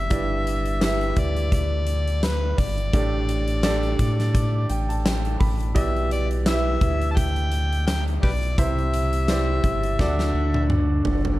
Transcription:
0.00 0.82 E5 medium
0.10 1.13 G1 loud
0.10 1.13 G2 medium
0.10 0.63 E4 medium
0.10 0.62 G4 medium
0.10 0.63 B4 medium
0.10 0.63 D5 medium
0.10 kick loud
0.10 closed hi-hat medium
0.47 closed hi-hat medium
0.66 closed hi-hat soft
0.81 1.82 E4 medium
0.81 1.82 G4 medium
0.81 1.82 B4 medium
0.81 1.82 E5 medium
0.81 1.20 E5 medium
0.81 snare medium
0.81 closed hi-hat medium
1.01 closed hi-hat soft
1.16 2.54 D2 medium
1.16 1.53 D5 medium
1.16 kick medium
1.16 closed hi-hat medium
1.37 closed hi-hat soft
1.52 2.19 D5 medium
1.52 kick medium
1.52 closed hi-hat medium
1.87 closed hi-hat medium
2.08 closed hi-hat soft
2.23 2.60 B4 medium
2.23 snare loud
2.23 closed hi-hat medium
2.58 2.91 G1 loud
2.58 4.70 D5 medium
2.58 kick medium
2.58 open hi-hat medium
2.78 closed hi-hat soft
2.93 3.95 A1 loud
2.93 3.96 A2 medium
2.93 3.45 D4 medium
2.93 3.46 G4 medium
2.93 3.46 A4 medium
2.93 3.46 D5 medium
2.93 kick loud
2.93 closed hi-hat medium
3.29 closed hi-hat medium
3.48 closed hi-hat soft
3.63 4.65 D4 medium
3.63 4.65 G4 medium
3.63 4.65 A4 medium
3.63 4.65 D5 medium
3.63 snare medium
3.63 closed hi-hat medium
3.83 closed hi-hat soft
3.99 4.66 A2 medium
3.99 kick medium
3.99 closed hi-hat medium
4.20 snare soft
4.20 closed hi-hat medium
4.35 kick medium
4.35 closed hi-hat medium
4.70 5.37 A1 loud
4.70 4.88 G5 medium
4.70 closed hi-hat medium
4.89 5.04 A5 medium
4.89 closed hi-hat soft
5.05 5.38 G5 medium
5.05 snare loud
5.05 closed hi-hat medium
5.25 closed hi-hat soft
5.40 5.73 A1 loud
5.40 5.73 B5 medium
5.40 kick medium
5.40 open hi-hat medium
5.60 closed hi-hat soft
5.75 6.78 B1 loud
5.75 6.77 B2 medium
5.75 6.27 E4 medium
5.75 6.27 G4 medium
5.75 6.27 B4 medium
5.75 6.27 D5 medium
5.75 6.09 E5 loud
5.75 kick loud
5.75 closed hi-hat medium
5.96 closed hi-hat soft
6.11 6.28 D5 medium
6.11 closed hi-hat medium
6.31 closed hi-hat medium
6.46 7.47 E4 medium
6.46 7.47 G4 medium
6.46 7.47 B4 medium
6.46 7.47 E5 medium
6.46 7.07 E5 loud
6.46 snare loud
6.46 closed hi-hat medium
6.81 8.19 D2 medium
6.81 kick medium
6.81 closed hi-hat medium
7.02 closed hi-hat soft
7.11 7.18 A5 medium
7.16 7.86 G5 loud
7.16 kick medium
7.16 closed hi-hat medium
7.36 closed hi-hat soft
7.52 closed hi-hat medium
7.73 closed hi-hat soft
7.87 8.03 G5 medium
7.87 snare loud
7.87 closed hi-hat medium
8.08 closed hi-hat soft
8.23 8.56 B1 loud
8.23 8.30 G4 medium
8.23 8.31 B4 medium
8.23 8.56 D5 medium
8.23 kick medium
8.23 open hi-hat medium
8.43 closed hi-hat soft
8.58 9.60 C2 loud
8.58 9.60 C3 medium
8.58 9.10 E4 medium
8.58 9.10 G4 medium
8.58 9.10 C5 medium
8.58 10.66 E5 loud
8.58 9.10 E5 medium
8.58 kick loud
8.58 closed hi-hat medium
8.79 closed hi-hat soft
8.94 closed hi-hat medium
9.13 closed hi-hat medium
9.28 10.00 E4 medium
9.28 10.00 G4 medium
9.28 10.00 C5 medium
9.28 9.99 D5 medium
9.28 snare medium
9.28 closed hi-hat medium
9.64 9.97 G1 medium
9.64 kick medium
9.64 closed hi-hat medium
9.83 closed hi-hat soft
9.99 10.32 D2 loud
9.99 11.02 D3 medium
9.99 11.14 D4 loud
9.99 11.13 F#4 medium
9.99 11.14 A4 medium
9.99 11.14 D5 loud
9.99 kick loud
9.99 snare medium
10.19 snare medium
10.34 11.01 D2 loud
10.54 high tom medium
10.70 mid tom medium
11.05 11.38 F#1 medium
11.05 floor tom medium
11.25 floor tom medium

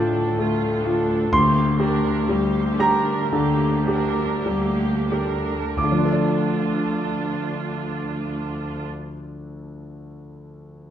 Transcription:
0.00 0.27 D2 soft
0.00 0.20 A2 soft
0.00 0.39 A3 soft
0.00 0.38 D4 soft
0.00 0.86 F4 soft
0.00 0.38 A4 soft
0.00 1.35 G5 medium
0.00 1.29 A5 medium
0.38 1.21 D2 soft
0.38 0.85 A3 soft
0.38 1.13 A3 soft
0.38 0.85 F4 soft
0.85 1.32 D4 soft
0.85 1.32 F4 soft
0.85 1.32 A4 soft
1.32 2.17 D2 soft
1.32 3.28 D2 medium
1.32 1.76 A#3 soft
1.32 1.76 G4 soft
1.32 2.75 C6 medium
1.80 2.29 D4 soft
1.80 2.58 G4 soft
1.80 2.29 A#4 soft
2.29 3.19 D2 soft
2.29 3.11 G3 soft
2.29 2.79 A#3 soft
2.29 2.79 G4 soft
2.79 3.32 D4 soft
2.79 3.65 G4 soft
2.79 3.32 A#4 soft
2.79 5.07 A#5 medium
3.32 4.33 D2 medium
3.32 4.23 D3 soft
3.32 3.84 A#3 soft
3.32 3.84 G4 soft
3.88 4.47 D4 soft
3.88 4.84 G4 soft
3.88 4.47 A#4 soft
4.46 5.62 D2 soft
4.46 5.51 G3 soft
4.46 5.11 A#3 soft
4.46 5.11 G4 soft
5.11 5.77 D4 soft
5.11 5.78 G4 soft
5.11 5.78 A#4 soft
5.77 8.84 D2 soft
5.77 8.85 D2 soft
5.77 8.86 D4 soft
5.77 8.86 F4 soft
5.77 8.85 D6 soft
5.84 8.91 D3 soft
5.92 8.99 F3 soft
5.98 9.06 D4 soft
6.05 9.12 A4 soft
6.12 9.20 D5 soft

